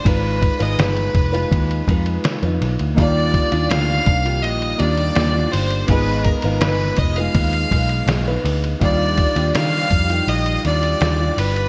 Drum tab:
RD |x-xxxxxxxxxxxxxx|x-xxx-xxxxxxx-xx|x-xxx-xxxxxxx-xx|x-xxx-xxxxxxx-xx|
HH |----------------|--------------o-|--------------o-|--------------o-|
SD |----o-------o-o-|----o-------o---|----o-------o---|----o-------o---|
BD |o-o---o-o-o-----|o-o---o---------|o-o---o-o-o-----|o-o---o---------|